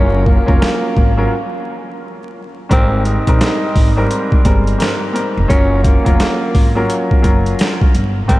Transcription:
0.00 0.37 F#1 loud
0.00 0.42 F#3 medium
0.00 0.22 C#4 loud
0.00 0.43 C#4 medium
0.00 0.43 F4 medium
0.00 0.43 A#4 loud
0.26 1.27 A#3 medium
0.26 kick loud
0.46 0.59 F1 medium
0.46 1.10 F#3 medium
0.46 1.10 C#4 medium
0.46 1.11 F4 medium
0.46 1.11 A#4 loud
0.46 kick medium
0.62 snare loud
0.97 1.25 G#1 medium
0.97 kick loud
1.17 1.31 F#3 medium
1.17 1.31 C#4 medium
1.17 1.31 F4 medium
1.17 1.31 A#4 loud
2.69 3.16 G#1 loud
2.69 3.21 G#2 medium
2.69 3.22 G3 medium
2.69 3.22 C4 medium
2.69 3.03 C4 loud
2.69 3.22 A#4 loud
2.69 kick loud
2.69 closed hi-hat medium
3.05 4.28 D#4 medium
3.05 closed hi-hat medium
3.27 3.38 A#1 medium
3.27 3.90 G#2 medium
3.27 3.90 G3 medium
3.27 3.91 C4 medium
3.27 3.91 A#4 loud
3.27 kick medium
3.27 closed hi-hat medium
3.41 snare loud
3.41 closed hi-hat medium
3.76 4.04 G#1 medium
3.76 kick loud
3.76 open hi-hat medium
3.96 4.42 G#2 medium
3.96 4.42 G3 medium
3.96 4.42 C4 medium
3.96 4.42 A#4 loud
4.11 closed hi-hat medium
4.32 kick medium
4.45 4.73 G1 medium
4.45 4.77 G3 medium
4.45 4.78 G#3 medium
4.45 4.78 C4 medium
4.45 4.78 A#4 loud
4.45 kick medium
4.45 closed hi-hat medium
4.67 closed hi-hat medium
4.78 5.11 G#2 medium
4.78 5.12 G3 medium
4.78 5.13 C4 medium
4.78 5.13 A#4 medium
4.78 snare loud
4.78 closed hi-hat medium
5.13 5.47 G#2 medium
5.13 5.47 G3 medium
5.13 5.47 C4 medium
5.13 5.48 A#4 medium
5.13 closed hi-hat medium
5.37 5.48 F1 medium
5.48 5.95 F#1 medium
5.48 6.00 F#3 medium
5.48 6.01 C#4 medium
5.48 5.81 C#4 loud
5.48 6.01 F4 medium
5.48 6.01 A#4 loud
5.48 kick loud
5.48 closed hi-hat medium
5.84 7.07 A#3 medium
5.84 kick loud
5.84 closed hi-hat medium
6.04 6.17 F1 medium
6.04 6.68 F#3 medium
6.04 6.68 C#4 medium
6.04 6.69 F4 medium
6.04 6.69 A#4 loud
6.04 kick medium
6.04 closed hi-hat medium
6.20 snare loud
6.20 closed hi-hat medium
6.55 6.83 G#1 medium
6.55 kick loud
6.55 open hi-hat medium
6.75 7.21 F#3 medium
6.75 7.21 C#4 medium
6.75 7.21 F4 medium
6.75 7.21 A#4 loud
6.90 closed hi-hat medium
7.11 kick medium
7.22 7.52 F#1 medium
7.22 7.89 F#3 medium
7.22 7.89 C#4 medium
7.22 7.89 F4 medium
7.22 7.90 A#4 loud
7.22 kick medium
7.22 closed hi-hat medium
7.46 closed hi-hat medium
7.59 snare loud
7.59 closed hi-hat medium
7.82 kick loud
7.95 8.22 G1 medium
7.95 closed hi-hat medium
8.28 8.40 G#1 loud
8.28 8.40 G#2 medium
8.28 8.40 G3 medium
8.28 8.40 C4 loud
8.28 8.40 C4 medium
8.28 8.40 A#4 loud
8.28 kick loud
8.28 closed hi-hat medium

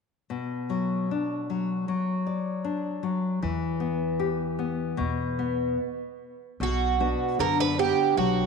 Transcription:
0.30 1.85 B2 soft
0.70 1.09 F#3 soft
1.11 1.50 D4 soft
1.50 1.87 F#3 soft
1.88 3.02 F#3 soft
2.27 2.64 D5 soft
2.65 3.03 D4 soft
3.03 3.41 F#3 soft
3.43 4.96 E2 medium
3.43 4.94 E3 medium
3.80 4.18 B3 soft
4.19 4.58 G4 soft
4.59 4.97 B3 soft
4.97 5.78 E2 medium
4.97 5.76 B2 soft
5.39 5.78 B3 soft
6.60 7.12 B1 medium
6.60 7.38 B2 medium
6.60 7.40 F#4 medium
7.00 7.63 B3 soft
7.00 7.63 D4 soft
7.00 7.63 F#4 soft
7.39 7.90 F#2 medium
7.39 8.15 D3 medium
7.39 7.60 A#4 medium
7.60 7.79 B4 medium
7.79 8.41 B3 soft
7.79 8.42 D4 soft
7.79 8.17 G4 medium
7.79 8.42 F#5 soft
8.17 8.46 B1 medium
8.17 8.46 F#3 medium
8.17 8.46 F#4 medium

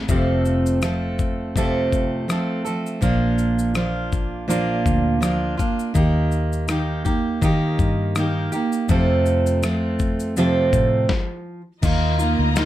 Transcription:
0.00 0.11 A4 medium
0.09 1.92 F1 loud
0.09 0.82 F2 medium
0.09 0.82 C3 medium
0.09 0.81 F3 medium
0.09 0.82 A3 medium
0.09 0.83 C4 medium
0.09 0.83 A4 medium
0.09 kick loud
0.09 shaker medium
0.45 shaker soft
0.66 shaker medium
0.82 1.56 F3 medium
0.82 1.56 A3 medium
0.82 1.57 C4 medium
0.82 1.57 A4 medium
0.82 cross-stick loud
0.82 shaker medium
1.19 kick medium
1.19 shaker soft
1.56 2.29 F2 medium
1.56 2.29 C3 medium
1.56 2.28 F3 medium
1.56 2.29 A3 medium
1.56 2.29 C4 medium
1.56 2.30 A4 medium
1.56 kick medium
1.56 shaker medium
1.92 2.62 A1 medium
1.92 kick medium
1.92 shaker soft
2.28 2.65 F3 medium
2.28 2.66 A3 medium
2.28 2.65 C4 medium
2.28 2.63 A4 medium
2.28 cross-stick loud
2.28 shaker medium
2.65 3.00 F3 soft
2.65 3.02 A3 medium
2.65 3.02 C4 medium
2.65 3.02 A4 medium
2.65 shaker soft
2.86 shaker soft
3.01 4.82 A#1 medium
3.01 3.75 A#2 medium
3.01 3.73 F3 medium
3.01 3.75 A#3 medium
3.01 3.75 D4 medium
3.01 3.76 F4 medium
3.01 kick loud
3.01 shaker medium
3.38 shaker soft
3.59 shaker medium
3.75 4.47 F3 medium
3.75 4.49 A#3 medium
3.75 4.48 D4 medium
3.75 4.49 F4 medium
3.75 cross-stick loud
3.75 shaker medium
4.12 kick medium
4.12 shaker soft
4.48 5.22 A#2 medium
4.48 5.19 F3 medium
4.48 5.21 A#3 medium
4.48 5.22 D4 medium
4.48 5.22 F4 medium
4.48 shaker medium
4.86 5.55 D2 medium
4.86 kick medium
4.86 shaker soft
5.21 5.58 F3 medium
5.21 5.59 A#3 medium
5.21 5.58 D4 medium
5.21 5.56 F4 medium
5.21 cross-stick loud
5.21 shaker medium
5.57 5.93 A#3 soft
5.57 5.95 D4 medium
5.57 5.95 F4 medium
5.57 kick medium
5.57 shaker soft
5.79 shaker soft
5.94 7.75 D#2 medium
5.94 6.67 D#3 medium
5.94 6.68 A#3 medium
5.94 6.69 D#4 medium
5.94 6.70 G4 medium
5.94 kick loud
5.94 shaker medium
6.32 shaker soft
6.53 shaker medium
6.68 7.05 D#3 medium
6.68 7.06 A#3 medium
6.68 7.05 D#4 medium
6.68 7.03 G4 medium
6.68 cross-stick loud
6.68 shaker medium
7.05 7.41 A#3 soft
7.05 7.42 D#4 soft
7.05 7.42 G4 medium
7.05 kick medium
7.05 shaker soft
7.41 8.15 D#3 medium
7.41 8.16 A#3 medium
7.41 8.16 D#4 medium
7.41 8.17 G4 medium
7.41 kick loud
7.41 shaker medium
7.79 8.49 G2 medium
7.79 kick medium
7.79 shaker soft
8.15 8.53 D#3 medium
8.15 8.53 A#3 medium
8.15 8.53 D#4 medium
8.15 8.51 G4 medium
8.15 cross-stick loud
8.15 shaker medium
8.52 8.90 A#3 soft
8.52 8.90 D#4 medium
8.52 8.89 G4 medium
8.52 shaker soft
8.72 shaker soft
8.89 9.63 F2 medium
8.89 10.69 F2 loud
8.89 9.63 C3 medium
8.89 9.62 F3 medium
8.89 9.63 A3 medium
8.89 9.64 C4 medium
8.89 9.64 A4 medium
8.89 kick loud
8.89 shaker medium
9.26 shaker soft
9.46 shaker medium
9.63 10.37 F3 medium
9.63 10.37 A3 medium
9.63 10.37 C4 medium
9.63 10.38 A4 medium
9.63 cross-stick loud
9.63 shaker medium
9.99 kick medium
9.99 shaker soft
10.20 shaker soft
10.37 11.10 F2 medium
10.37 11.10 C3 medium
10.37 11.61 F3 medium
10.37 11.11 A3 medium
10.37 11.11 C4 medium
10.37 11.11 A4 medium
10.37 shaker medium
10.73 11.07 A2 medium
10.73 kick medium
10.73 shaker soft
11.09 kick loud
11.09 snare medium
11.82 12.36 D#2 loud
11.82 12.19 D#3 medium
11.82 12.20 A#3 medium
11.82 12.19 D#4 medium
11.82 12.65 F4 medium
11.82 12.17 F4 medium
11.82 12.65 A#4 medium
11.82 12.65 D#5 medium
11.82 12.65 A#5 medium
11.82 kick loud
11.82 crash loud
11.82 shaker medium
12.18 12.54 A#3 soft
12.18 12.55 D#4 soft
12.18 12.55 F4 medium
12.18 shaker soft
12.39 12.65 D2 medium
12.55 12.65 A#3 medium
12.55 12.65 D#4 medium
12.55 12.65 F4 loud
12.55 snare loud
12.55 shaker medium

